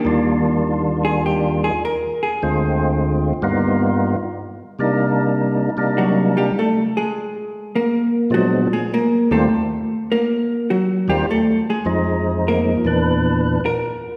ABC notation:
X:1
M:4/4
L:1/8
Q:"Swing" 1/4=102
K:Eb
V:1 name="Hollow-body jazz guitar"
[E,B,DG]2 z A G A B A- | A4 z4 | z4 [_G,_G] [=G,=G] [=A,=A] [_A,_A]- | [A,A]2 [B,B]2 [_G,_G] [A,A] [B,B] [=A,=A]- |
[=A,=A]2 [B,B]2 [_G,_G] [=G,=G] [A,A] [_A,_A]- | [A,A]2 [B,B]2 z2 B2 |]
V:2 name="Tonewheel organ" clef=bass
[E,,E,G,DF]4- [E,,E,G,DF] z3 | [D,,D,A,CF]3 [G,,G,B,_CEF]3 z2 | [C,G,B,DE]3 [C,G,B,DE]3 z2 | z4 [B,,F,A,_CD] z2 [E,,E,G,=CF] |
z4 z [E,,E,G,CF] z2 | [F,,F,A,E]3 [_F,,B,,_F,D_c]3 z2 |]